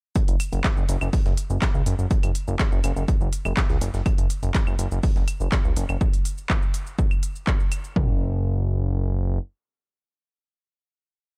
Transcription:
0.16 kick, closed hi-hat, shaker
0.28 F#1, closed hi-hat, shaker
0.40 closed hi-hat, claves, shaker
0.52 F#1, closed hi-hat, shaker
0.64 kick, snare, clap, closed hi-hat, shaker
0.77 F#1, shaker
0.89 F#1, closed hi-hat, shaker
1.01 F#1, claves, shaker
1.13 kick, open hi-hat, shaker
1.26 F#1, snare, shaker
1.37 closed hi-hat, shaker
1.50 F#1, shaker
1.62 kick, snare, clap, closed hi-hat, claves, shaker
1.74 C#2, shaker
1.86 F#1, closed hi-hat, shaker
1.99 F#1, shaker
2.11 kick, closed hi-hat, shaker
2.23 F#1, closed hi-hat, claves, shaker
2.35 closed hi-hat, shaker
2.48 F#1, shaker
2.59 kick, snare, clap, closed hi-hat, shaker
2.72 F#1, shaker
2.84 F#1, closed hi-hat, claves, shaker
2.96 F#1, shaker
3.08 kick, closed hi-hat, shaker
3.21 F#1, shaker
3.33 closed hi-hat, shaker
3.45 F#1, claves, shaker
3.57 kick, snare, clap, closed hi-hat, shaker
3.70 C#2, snare, shaker
3.81 F#1, closed hi-hat, shaker
3.94 F#1, snare, shaker
4.06 kick, closed hi-hat, claves, shaker
4.18 F#1, closed hi-hat, shaker
4.30 closed hi-hat, shaker
4.43 F#1, closed hi-hat, shaker
4.55 kick, snare, clap, closed hi-hat, shaker
4.67 F#1, claves, shaker
4.79 F#1, closed hi-hat, shaker
4.91 F#1, shaker
5.03 kick, open hi-hat, shaker
5.16 F#1, snare, shaker
5.28 closed hi-hat, claves, shaker
5.40 F#1, shaker
5.52 kick, snare, clap, closed hi-hat, shaker
5.65 C#2, shaker
5.77 F#1, closed hi-hat, shaker
5.89 F#1, claves, shaker
6.01 kick, shaker
6.13 closed hi-hat, shaker
6.25 closed hi-hat, shaker
6.38 shaker
6.50 kick, clap, claves, shaker
6.62 shaker
6.74 closed hi-hat, shaker
6.87 shaker
6.99 kick, shaker
7.11 claves, shaker
7.23 closed hi-hat, shaker
7.35 shaker
7.47 kick, clap, shaker
7.60 shaker
7.72 closed hi-hat, claves, shaker
7.84 shaker
7.96 F#1, kick, floor tom

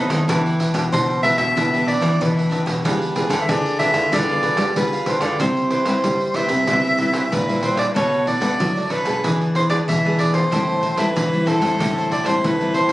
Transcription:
Already playing: F#2 D#3 A3 C4 D#4 B4
0.09 D#3 A4 B4 D#5, pandeiro
0.28 E3 B3 D4 G4 B4 E5, pandeiro
0.46 pandeiro
0.59 D4 G4 B4 E5, pandeiro
0.73 B2 D4 G4 B4 E5, pandeiro
0.92 B2 B3 D4 G4 C5, pandeiro
1.10 pandeiro
1.22 B3 D4 G4 B4 E5, pandeiro
1.38 B2 G4 B4 E5, pandeiro
1.56 B2 E3 D4 G4 B4 E5, pandeiro
1.73 B3 D4 G4 B4 E5, pandeiro
1.86 D4 G4 B4 D5 E5, pandeiro
2.01 E3 D4 G4 B4 E5, pandeiro
2.21 B2 E3 B3 D4 G4 B4, pandeiro
2.36 G4 B4 E5, pandeiro
2.50 D4 G4 B4 E5, pandeiro
2.65 B2 G4 B4 E5, pandeiro
2.84 G3 B3 D4 F4 G4 G#4 B4 F5, pandeiro
3.02 pandeiro
3.15 B3 D4 F4 G4 G#4 B4 F5, pandeiro
3.29 D3 D4 G4 B4 F5, pandeiro
3.42 E5
3.48 D3 B3 F4 G#4 D5, pandeiro
3.65 pandeiro
3.79 B3 D4 F4 G4 G#4 B4 E5 F5, pandeiro
3.93 D3 G4 B4 F5, pandeiro
4.12 D3 G3 B3 D4 F4 G4 G#4 B4 D5 F5, pandeiro
4.28 B3 F4 G4 G#4 B4 F5, pandeiro
4.42 D4 G4 B4 F5, pandeiro
4.57 G3 D4 G4 B4 F5, pandeiro
4.76 D3 G3 B3 F4 G#4 B4, pandeiro
4.93 G4 B4 F5, pandeiro
5.06 D4 G4 B4 C5 F5, pandeiro
5.21 D3 G4 B4 D5 F5, pandeiro
5.40 C3 G3 E4 G4 C5 E5, pandeiro
5.57 pandeiro
5.70 G4 B4 C5 E5, pandeiro
5.85 G3 C4 E4 G4 B4 C5 E5, pandeiro
6.04 G2 G3, pandeiro
6.20 pandeiro
6.34 G3 B3 E4 G4 B4 C5 E5, pandeiro
6.49 C3 B4 C5 E5, pandeiro
6.67 C3 G3 B3 E4 G4 B4 C5 E5, pandeiro
6.84 B4 C5 E5, pandeiro
6.97 G3 B3 E4 G4 B4 C5 E5, pandeiro
7.13 G4 B4 C5 E5, pandeiro
7.32 G2 A#2 B4, pandeiro
7.48 G3 E4 B4 C5 E5, pandeiro
7.61 G4 B4 C5 E5, pandeiro
7.76 B4 C5 D5 E5, pandeiro
7.94 B2 A3 D4 F#4 A4 B4 C#5, pandeiro
8.13 pandeiro
8.25 D4 A4 B4 D5, pandeiro
8.40 A3 B3 D4 F#4 A4 B4 D5, pandeiro
8.60 F#2 F#3, pandeiro
8.77 A3 D4 F#4, pandeiro
8.90 D4 A4 B4 D5, pandeiro
9.04 B2 B3 D4 G#4 A4 B4 D5, pandeiro
9.23 E3 E4 G#4 B4 D5, pandeiro
9.41 G#4 B4 D5, pandeiro
9.55 E4 G#4 B4 C5 D5, pandeiro
9.69 B3 D4 E4 G#4 B4 D5, pandeiro
9.88 B2 E3 E5, pandeiro
10.05 B3 D4 G#4 B4 D5, pandeiro
10.18 E4 G#4 B4 D5, pandeiro
10.33 G#4 B4 C5 D5, pandeiro
10.51 A2 G3 C4 E4 G4 C5 E5 A5, pandeiro
10.70 pandeiro
10.81 G4 C5 E5 A5, pandeiro
10.96 G3 A3 C4 E4 G4 B4 C5 E5 A5, pandeiro
11.16 E3, pandeiro
11.33 G3 C4 E4, pandeiro
11.46 G4 A4 C5 E5 A5, pandeiro
11.60 A2 G3 C4 E4 C5 E5 A5, pandeiro
11.78 A2 G3 C4 E4 G4 C5 E5 A5, pandeiro
11.96 C5 E5 A5, pandeiro
12.09 G4 C5 D5 E5 A5, pandeiro
12.23 G3 C4 E4 G4 C5 E5 A5, pandeiro
12.44 A2 E3 B4, pandeiro
12.59 G3 C4 E4 C5 E5 A5, pandeiro
12.73 G4 C5 E5 A5, pandeiro
12.88 E5 A5, pandeiro

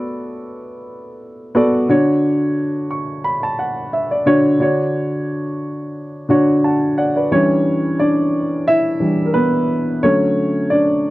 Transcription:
Already playing: B3 F#4 A4 D5
1.55 B3 F#4 A4 D5
1.89 D3 D4 F#4 C#5
2.91 C#6
3.24 B5
3.43 A5
3.59 F#5
3.93 E5
4.11 D5
4.26 D3 D4 F#4 C#5
4.60 D3 D4 F#4 C#5
6.29 D3 D4 F#4 C#5
6.64 F#5 A5
6.98 D5 F#5
7.16 B4 D5
7.31 E3 G3 C#4 D4 C#5
8.00 D4 D5
8.68 E4 E5
9.00 E3 G3 D4
9.26 A#4
9.34 B3 B4
10.03 D3 F#3 A3 C#4 C#5
10.70 D4 D5

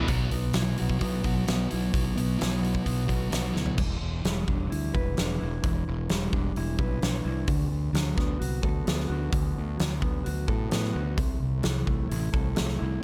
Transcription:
0.07 B1 B2 F#3 B3, kick, open hi-hat
0.31 B1 B2 F#3 B3, open hi-hat
0.53 B1 B2 F#3 E4, snare, open hi-hat
0.77 B2 F#3 F#4, open hi-hat
0.81 B1
0.90 kick
0.99 B1 B2 F#3 B3, kick, open hi-hat
1.23 B1 B2 F#3 F#4, kick, open hi-hat
1.46 B1 B2 F#3 B3, snare, open hi-hat
1.70 B1 B2 F#3 E4, open hi-hat
1.93 B1 B2 F#3, kick, open hi-hat
2.16 B1 B2 F#3 B3, open hi-hat
2.39 B1 B2 F#3 E4, snare, open hi-hat
2.61 B2 F#3 F#4, open hi-hat
2.75 kick
2.84 B1 B2 F#3 B3, kick, open hi-hat
3.07 B1 B2 F#3 F#4, kick, open hi-hat
3.30 B1 B2 F#3 B3, snare, open hi-hat
3.54 D2 B2 F#3 E4, snare
3.66 floor tom
3.78 E1 E3, kick, crash
4.01 E1
4.24 E1 G3, snare, open hi-hat
4.48 E1 D4, kick
4.70 D2 E4, open hi-hat
4.94 E1 B4, kick
5.17 E1 D4, snare, open hi-hat
5.40 E1 E4
5.63 E1 E3, kick, open hi-hat
5.88 E1
6.09 E1 G3, snare, open hi-hat
6.33 E1 D4, kick
6.56 E1 E4, open hi-hat
6.79 B1 B4, kick
7.01 B1 D4, snare, open hi-hat
7.25 C2 E4
7.47 D2 D3, kick, open hi-hat
7.71 D2
7.93 D2 F#3, snare, open hi-hat
8.17 D2 B3, kick, snare
8.39 C2 F#4, open hi-hat
8.62 D2 A4, kick
8.85 D2 B3, snare, open hi-hat
9.00 snare
9.08 D2 F#4
9.32 D2 D3, kick, open hi-hat
9.58 D2
9.77 D2 F#3, snare, open hi-hat
10.01 D2 B3, kick
10.24 D2 F#4, open hi-hat
10.48 A2 A4, kick
10.70 A2 B3, snare, open hi-hat
10.84 snare
10.92 D2 F#4
11.17 C2 C3, kick, open hi-hat
11.42 C2
11.63 C2 E3, snare, open hi-hat
11.86 C2 A3, kick
12.09 A1 E4, open hi-hat
12.33 C2 A4, kick
12.55 A3, snare, open hi-hat
12.60 C2
12.69 snare
12.79 C2 E4

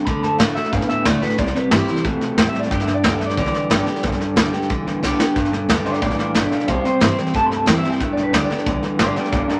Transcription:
0.05 D2 D3 A3 B5, kick, snare
0.22 F#2 D3 A3 A5, snare
0.38 A2 D3 A3 D4 F#4 F5, snare, hi-hat pedal
0.55 D3 A3 D4 F#4 E5, muted upright bass stroke, snare
0.64 snare
0.72 F#2 A2 D3 B3 F5, kick, snare
0.81 snare
0.88 D3 B3 E5, muted upright bass stroke, snare
1.05 D2 D3 A3 D4 F#4 D5, snare, hi-hat pedal
1.21 D3 A3 D4 F#4 B4, muted upright bass stroke, snare
1.30 snare
1.38 C2 C3 G3 D5, kick, snare
1.47 snare
1.55 C3 G3 B4, muted upright bass stroke, snare
1.71 G2 C3 E3 G3 C4 E4 G4, snare, hi-hat pedal
1.87 C3 G3 C4 E4, muted upright bass stroke, snare
1.96 snare
2.04 E2 B2 C3 A3, kick, snare
2.20 C2 C3 A3, snare
2.37 E2 A2 C3 G3 G5, snare, hi-hat pedal
2.49 E5
2.54 C3 G3, muted upright bass stroke, snare
2.60 D5, snare
2.71 G1 G2 D3 G5, kick, snare
2.80 E5, snare
2.87 B1 G2 D3, snare
2.94 D5
3.04 D2 G2 D3 G3 B3 G4 G5, snare, hi-hat pedal
3.14 E5
3.19 G2 D3 B3 G4, muted upright bass stroke, snare
3.26 D5, snare
3.37 B1 G2 D3 E3 D5, kick, snare
3.46 snare
3.53 G2 E3, muted upright bass stroke, snare
3.70 G1 G2 D3 G3 B3 G4, snare, hi-hat pedal
3.86 G2 D3 B3 G4, muted upright bass stroke, snare
3.96 snare
4.03 B1 G2 D3, kick, snare
4.12 snare
4.19 G2 D3, muted upright bass stroke, snare
4.36 D2 G2 D3 G3 B3 G4, snare, hi-hat pedal
4.53 G2 D3 B3 G4, muted upright bass stroke, snare
4.62 snare
4.70 B1 G2 D3 E3, kick, snare
4.86 G1 G2 E3, snare
5.02 B1 G2 D3 G3 B3 G4, snare, hi-hat pedal
5.18 G2 D3 B3 G4, muted upright bass stroke, snare
5.35 G1 G2 D3, kick, snare
5.45 snare
5.52 B1 G2 D3, snare
5.68 D2 G2 D3 G3 B3 G4, snare, hi-hat pedal
5.85 G2 D3 F4 D5, muted upright bass stroke, snare
5.94 snare
6.01 B1 G2 A2 E3 F4 D5, kick, snare
6.10 snare
6.18 G2 E3 F4 D5, muted upright bass stroke, snare
6.34 G1 G2 B2 D3 D5 F5, snare, hi-hat pedal
6.51 G2 D3 D5 F5, muted upright bass stroke, snare
6.60 snare
6.67 C2 C3 G3 C5 F5, kick, snare
6.84 C3 G3 C5, muted upright bass stroke, snare
7.00 G2 C3 E3 G3 C4 E4, snare, hi-hat pedal
7.17 C3 G3 C4 E4, muted upright bass stroke, snare
7.27 snare
7.34 E2 G2 C3 A3 A5, kick, snare
7.46 B5
7.50 C2 C3 A3, snare
7.56 A5
7.66 E2 C3 E3 G3 C4 E4 G5, snare, hi-hat pedal
7.78 E5
7.83 C3 G3 C4 E4, muted upright bass stroke, snare
7.89 G5, snare
8.00 G1 G2 D3 E5, kick, snare
8.13 B1 G2 D5
8.17 D3, snare
8.23 B4
8.32 D2 G2 D3 G3 B3 G4 D5, snare, hi-hat pedal
8.45 D5
8.49 G2 D3 B3 G4, muted upright bass stroke, snare
8.58 snare
8.66 B1 G2 D3 E3, kick, snare
8.82 G2 E3, muted upright bass stroke, snare
8.99 G1 G2 D3 G3 B3 F4 G4 D5, snare, hi-hat pedal
9.16 G2 D3 B3 F4 G4 D5, muted upright bass stroke, snare
9.24 snare
9.32 B1 G2 D3 F4 D5, kick, snare
9.48 G2 D3 D4 A#4, muted upright bass stroke, snare

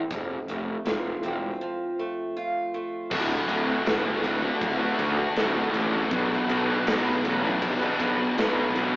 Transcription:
Already playing: A3 C4 E4 A4
0.11 F1 F2, kick, closed hi-hat
0.48 F1 A3, closed hi-hat
0.85 F1 F4, snare, closed hi-hat
1.23 E1 C4, closed hi-hat
1.61 F3
1.99 A3
2.37 F4
2.74 A3
3.11 D1 D2 A2 D3 A3 F#4, kick, crash
3.31 snare
3.48 D1 A2 D3 A3 F#4, ride
3.68 D3 A3 F#4
3.86 G1 D2 A2 D3 A3 F#4, snare, ride
4.04 D3 A3 F#4
4.23 D1 A2 D3 A3 F#4, muted distorted electric guitar stroke, ride
4.42 D3 A3 F#4, muted distorted electric guitar stroke
4.61 D1, kick, ride
4.79 D3 A3 F#4
4.98 D2 A2 D3 A3 F#4, kick, ride
5.17 D3 A3 F#4, muted distorted electric guitar stroke
5.35 D1 D2 A2 D3 A3 F#4, snare, ride
5.54 D3 A3 F#4
5.73 A1 A2 D3 A3 F#4, ride
5.92 D3 A3 F#4
6.11 B1 B2 F#3 B3 D4 F#4 B4, kick, ride
6.32 snare
6.49 B1 B3 D4 F#4 B4, ride
6.68 B3 D4 F#4 B4
6.86 B1 B2 F#3 B3 D4 F#4 B4, snare, ride
7.05 B3 D4 F#4 B4
7.24 A1 B3 D4 F#4 B4, muted distorted electric guitar stroke, ride
7.43 B3 D4 F#4 B4, muted distorted electric guitar stroke
7.62 B1, kick, ride
7.80 B3 D4 F#4 B4
8.00 B1 B3 D4 F#4 B4, kick, ride
8.18 B3 D4 F#4 B4, muted distorted electric guitar stroke
8.36 B1 B2 F#3 B3 D4 F#4 B4, snare, ride
8.56 B3 D4 F#4 B4
8.74 B1 B3 D4 F#4 B4, ride

